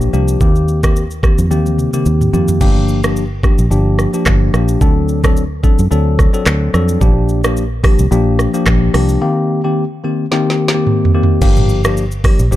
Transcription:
Already playing: F3 A#3 D4 G4
0.01 shaker
0.13 C2 F3 A#3 D4 G4, shaker
0.28 shaker
0.41 D#2 D#3 A#3 C4 G4, kick, shaker
0.56 shaker
0.68 shaker
0.83 D#3 A#3 C4 G4, kick, cross-stick, shaker
0.96 shaker
1.11 shaker
1.23 D#3 A#3 C4 G4, kick, cross-stick, shaker
1.38 F2, shaker
1.50 D#2 D#3 A#3 C4 G4, high tom, shaker
1.66 high tom, shaker
1.78 mid tom, shaker
1.93 D#3 A#3 C4 G4, mid tom, shaker
2.06 D#2, shaker
2.21 mid tom, shaker
2.33 F2 D#3 A#3 C4 G4, floor tom, shaker
2.48 floor tom, shaker
2.61 G1 F3 A#3 D4 G4, kick, crash, shaker
2.88 shaker
3.03 F3 A#3 D4 G4, cross-stick, shaker
3.16 shaker
3.43 F3 A#3 D4 G4, kick, cross-stick, shaker
3.58 A#1, shaker
3.71 G1 F3 A#3 D4 G4, shaker
3.99 cross-stick, shaker
4.13 F3 A#3 D4 G4, shaker
4.26 G1, kick, cross-stick, clap, shaker
4.53 A#1 F3 A#3 D4 G4, cross-stick, shaker
4.68 shaker
4.81 D2 F#3 C4 D4 A4, kick, shaker
5.09 shaker
5.23 F#3 C4 D4 A4, kick, cross-stick, shaker
5.37 shaker
5.63 F#3 C4 D4 A4, kick, shaker
5.79 F#2, shaker
5.91 D2 F#3 C4 D4 A4, shaker
6.19 kick, cross-stick, shaker
6.33 F#3 C4 D4 A4, shaker
6.46 D2, cross-stick, clap, shaker
6.73 F2 F#3 C4 D4 A4, cross-stick, shaker
6.89 shaker
7.01 A#1 F3 A#3 D4 G4, kick, shaker
7.29 shaker
7.44 F3 A#3 D4 G4, cross-stick, shaker
7.57 shaker
7.83 F3 A#3 D4 G4, kick, cross-stick, open hi-hat, shaker
7.99 C2, shaker
8.11 A#1 F3 A#3 D4 G4, shaker
8.39 cross-stick, shaker
8.54 F3 A#3 D4 G4, shaker
8.66 A#1, kick, cross-stick, clap, shaker
8.94 C2 F3 A#3 D4 G4, cross-stick, open hi-hat, shaker
9.09 shaker
9.21 D#3 A#3 C4 G4
9.64 D#3 A#3 C4 G4
10.04 D#3 A#3 C4 G4
10.31 D#3 A#3 C4 G4, snare
10.50 snare
10.68 snare
10.74 D#3 A#3 C4 G4
10.87 mid tom
11.05 floor tom
11.14 D#3 A#3 C4 G4
11.23 floor tom
11.41 G1 F3 A#3 D4 G4, kick, crash, shaker
11.56 mid tom, shaker
11.69 shaker
11.84 F3 A#3 D4 G4, cross-stick, shaker
11.97 shaker
12.12 shaker
12.24 F3 A#3 D4 G4, kick, cross-stick, open hi-hat, shaker
12.39 A#1, shaker
12.52 G1 F3 A#3 D4 G4, shaker

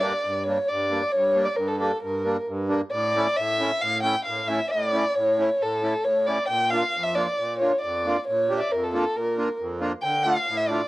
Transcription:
Already playing: G2
0.00 G3 A#3 D4 D5
0.25 G2
0.44 G3 A#3 D4 C#5
0.68 G2 D5
0.91 G3 A#3 D4
1.12 G2 C#5
1.35 G3 A#3 D4
1.45 D5
1.56 G2 A#4
1.67 A4
1.80 G3 A#3 D4 A4
2.03 G2 A#4
2.25 G3 A#3 D4
2.48 G2
2.69 G3 A#3 D4
2.91 A2 D5
3.16 A3 C#4 E4
3.36 A2 E5
3.60 A3 C#4 E4
3.81 A2 F5
4.03 A3 C#4 E4 G5
4.25 A2 F5
4.48 A3 C#4 E4 E5
4.71 A2 D5
4.93 A3 C#4 E4
5.15 A2 C#5
5.38 A3 C#4 E4
5.61 A2 A4
5.83 A3 C#4 E4
6.04 A2 C#5
6.26 A3 C#4 E4 D5
6.48 A#2 G5
6.70 A#3 D4 F4 F5
6.95 F2
7.03 E5
7.15 A#3 D4 F4 D5
7.38 A#2
7.58 A#3 D4 F4 C#5
7.81 F2 D5
8.06 A#3 D4 F4
8.27 A#2 C#5
8.49 A#3 D4 G4
8.57 D5 E5
8.71 F2 A#4
8.84 A4
8.94 A#3 D4 F4 A4
9.15 A#2 A#4
9.38 A#3 D4 F4
9.60 F2
9.81 A#3 D4 F4
10.02 D3 G5
10.23 A3 D4 F4 F5
10.49 A2
10.57 E5
10.68 A3 D4 F4 D5

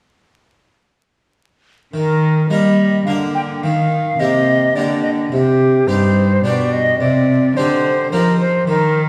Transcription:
1.93 D#3 A#4
2.50 G3 A#3 A#4 D#5
3.05 D3 A#3 A#4 F5
3.35 G5
3.63 D#3 F5
4.19 C3 A#3 G4 D#5
4.76 D3 A#3 G4 D5
5.03 D#5
5.32 C3 G4
5.87 G2 D#4 G4 C5
6.44 B2 D4 G4 D5
6.73 D#5
7.00 C3 D5
7.57 D3 C4 D#4 G4 C5
8.12 F3 C4 D#4 G4 A#4
8.40 C5
8.67 D#3 A#4

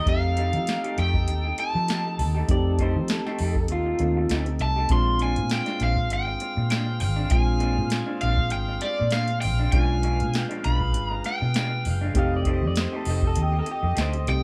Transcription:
Already playing: A3 D#4 G4 A4
0.05 F2 A3 C4 D#4 G4 F5, kick, closed hi-hat
0.37 F3 A3 D#4 G4, closed hi-hat
0.53 F3, muted clean electric guitar stroke, closed hi-hat
0.67 snare, closed hi-hat
0.84 F3 A3 D#4 G4, closed hi-hat
0.96 F2 F3 A3 D#4 G4 G5, closed hi-hat
1.14 muted clean electric guitar stroke, kick
1.28 D#2, muted clean electric guitar stroke, closed hi-hat
1.44 muted clean electric guitar stroke
1.58 A5, muted clean electric guitar stroke, closed hi-hat
1.74 F3, muted clean electric guitar stroke
1.88 F3 A3 D#4 G4, snare, closed hi-hat
2.06 muted clean electric guitar stroke
2.18 D#2, muted clean electric guitar stroke, open hi-hat
2.35 A3 D#4 G4
2.48 F2 A3 C4 D#4 G4 D5, kick, closed hi-hat
2.79 F3 A3 D#4 G4 C5, kick, closed hi-hat
2.96 F3, muted clean electric guitar stroke
3.08 A4, snare, closed hi-hat
3.26 F3 A3 D#4 G4, snare
3.39 F2 F3 A3 D#4, open hi-hat
3.43 G4
3.55 muted clean electric guitar stroke, kick
3.68 D#2 F4, muted clean electric guitar stroke, closed hi-hat
3.86 muted clean electric guitar stroke
3.99 D#2 A3 C4 D#4 A4, muted clean electric guitar stroke, closed hi-hat
4.17 muted clean electric guitar stroke
4.29 D2 F3 A3 D#4 G4, snare, closed hi-hat
4.46 muted clean electric guitar stroke, closed hi-hat
4.59 C2 A5, muted clean electric guitar stroke, closed hi-hat
4.76 A3 D#4 G4
4.89 A#1 A#2 G#3 C4 D4 F4 C6, kick, closed hi-hat
4.93 D4 G#4 C5 F5
5.19 A#2 G#3 C4 D4 G#5, closed hi-hat
5.36 A#2, muted clean electric guitar stroke, closed hi-hat
5.50 G5, snare, closed hi-hat
5.66 A#2 G#3 C4 D4, snare, closed hi-hat
5.79 A#1 A#2 G#3 C4 D4, snare, closed hi-hat
5.83 F5
5.96 muted clean electric guitar stroke, kick
6.10 G#1 G5, muted clean electric guitar stroke, closed hi-hat
6.27 muted clean electric guitar stroke
6.40 muted clean electric guitar stroke, closed hi-hat
6.57 A#2, muted clean electric guitar stroke
6.70 A#2 G#3 C4 D4 G5, snare, closed hi-hat
6.87 muted clean electric guitar stroke
7.00 G#1 G5, muted clean electric guitar stroke, open hi-hat
7.16 G#3 C4 D4
7.30 A#1 G#3 C4 D4 F4 G#5, kick, closed hi-hat
7.60 A#2 G#3 C4 D4, closed hi-hat
7.77 A#2, muted clean electric guitar stroke
7.90 snare, closed hi-hat
8.06 A#2 G#3 C4 D4
8.21 A#1 A#2 G#3 C4 D4 F5, closed hi-hat
8.38 muted clean electric guitar stroke, kick
8.50 G#1 G5, muted clean electric guitar stroke, closed hi-hat
8.68 muted clean electric guitar stroke
8.81 D5, muted clean electric guitar stroke, closed hi-hat
8.98 A#2, muted clean electric guitar stroke
9.11 A#2 G#3 C4 F5, snare, closed hi-hat
9.15 D4
9.28 muted clean electric guitar stroke, closed hi-hat
9.41 A#1 G5, muted clean electric guitar stroke, open hi-hat
9.59 G#3 C4 D4
9.72 B1 B2 F3 G#3 C#4 D4 F4 G#4 B4 G#5, kick, closed hi-hat
10.03 B2 F3 G#3 D4, closed hi-hat
10.19 B2, muted clean electric guitar stroke, closed hi-hat
10.34 G5, snare, closed hi-hat
10.49 B2 F3 G#3 D4, closed hi-hat
10.63 B1 B2 F3 G#3 D4 B5, closed hi-hat
10.80 muted clean electric guitar stroke, kick
10.94 G#1, muted clean electric guitar stroke, closed hi-hat
11.10 A#5, muted clean electric guitar stroke
11.24 G5, muted clean electric guitar stroke, snare, closed hi-hat
11.42 B2, muted clean electric guitar stroke
11.54 B2 F3 G#3 D4, snare, closed hi-hat
11.72 muted clean electric guitar stroke
11.85 F#1, muted clean electric guitar stroke, open hi-hat
12.01 F3 G#3 D4
12.14 F1 F3 A3 C4 D#4 G4 A4 D#5, kick, closed hi-hat
12.19 F5
12.36 D5
12.45 F3 A3 D#4 G4, kick, closed hi-hat
12.51 C5
12.62 F2, muted clean electric guitar stroke
12.67 D5
12.76 snare, closed hi-hat
12.81 C5
12.92 F3 A3 D#4 G4 A4
13.05 F1 F3 A3 D#4 G4, open hi-hat
13.10 C5
13.22 muted clean electric guitar stroke, kick
13.27 A4
13.36 D#2, muted clean electric guitar stroke, closed hi-hat
13.42 G4
13.52 muted clean electric guitar stroke
13.59 A4
13.66 muted clean electric guitar stroke, closed hi-hat
13.71 G4
13.83 F2, muted clean electric guitar stroke
13.95 D2 F3 A3 D#4 G4, snare, closed hi-hat
14.01 C5
14.13 muted clean electric guitar stroke, closed hi-hat
14.27 C2 A3 C4 D#4 G4 G5, muted clean electric guitar stroke, closed hi-hat

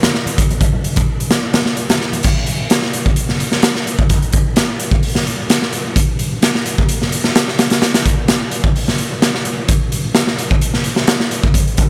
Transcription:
0.03 snare, closed hi-hat, high conga
0.14 snare
0.26 closed hi-hat, high conga
0.38 kick, closed hi-hat
0.50 closed hi-hat, high conga
0.61 kick, closed hi-hat
0.73 low conga
0.84 closed hi-hat
0.96 kick, closed hi-hat, low conga
1.20 closed hi-hat
1.31 snare, closed hi-hat
1.54 snare, closed hi-hat, high conga
1.66 snare
1.77 closed hi-hat
1.90 snare, closed hi-hat, high conga
2.01 snare
2.13 closed hi-hat, high conga
2.23 kick, closed hi-hat, crash
2.46 closed hi-hat
2.70 snare, closed hi-hat
2.82 snare
2.93 closed hi-hat
3.06 kick
3.16 closed hi-hat
3.29 snare
3.40 closed hi-hat
3.52 snare
3.62 snare, closed hi-hat
3.75 snare
3.87 closed hi-hat
3.99 kick
4.09 kick, closed hi-hat
4.22 closed hi-hat
4.32 kick, closed hi-hat
4.56 snare, closed hi-hat
4.79 closed hi-hat
4.91 kick
5.03 open hi-hat
5.15 snare
5.27 closed hi-hat
5.50 snare, closed hi-hat
5.62 snare
5.73 closed hi-hat
5.96 kick, closed hi-hat
6.19 closed hi-hat
6.42 snare, closed hi-hat
6.55 snare
6.66 closed hi-hat
6.78 kick
6.89 closed hi-hat
7.02 snare
7.12 closed hi-hat
7.24 snare
7.35 snare, closed hi-hat
7.48 snare
7.59 snare, closed hi-hat
7.70 snare, closed hi-hat
7.82 snare, closed hi-hat
7.94 snare, closed hi-hat
8.05 kick, closed hi-hat
8.28 snare, closed hi-hat
8.51 closed hi-hat
8.64 kick
8.76 open hi-hat
8.88 snare
8.98 closed hi-hat
9.22 snare, closed hi-hat
9.35 snare
9.45 closed hi-hat
9.68 kick, closed hi-hat
9.92 closed hi-hat
10.15 snare, closed hi-hat
10.27 snare
10.38 closed hi-hat
10.51 kick
10.61 closed hi-hat
10.74 snare
10.84 closed hi-hat
10.96 snare
11.07 snare, closed hi-hat
11.20 snare
11.31 closed hi-hat
11.44 kick
11.54 kick, closed hi-hat
11.67 closed hi-hat
11.77 kick, closed hi-hat

